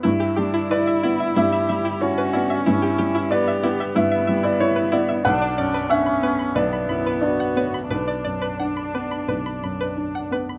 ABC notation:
X:1
M:4/4
L:1/16
Q:1/4=92
K:Bm
V:1 name="Synth pluck"
E G G E B e E e E e e E z B E e | E G G E B e E e E e e E z B E e | B d d B f b B b B b b B z f B b | B d d B f b B b B b b B z f B b |]
V:2 name="Cello"
E2 D2 E4 G4 F4 | E4 G4 E8 | D2 C2 B,4 D2 E2 F4 | D12- D2 z2 |]
V:3 name="Viola"
E12 C4- | C4 B,2 B,8- B,2 | D2 D2 C4 B,8 | D12- D2 z2 |]
V:4 name="Felt piano"
z4 d4 e4 c2 d2 | z4 d4 e3 d c2 d2 | f4 e4 d4 d2 c2 | B12 z4 |]
V:5 name="Felt piano"
G,,2 G,2 E2 B,2 G,,2 G,2 E2 B,2 | G,,2 G,2 E2 B,2 G,,2 G,2 E2 B,2 | B,,,2 F,,2 D2 B,2 B,,,2 F,,2 D2 B,2 | B,,,2 F,,2 D2 B,2 B,,,2 F,,2 D2 B,2 |]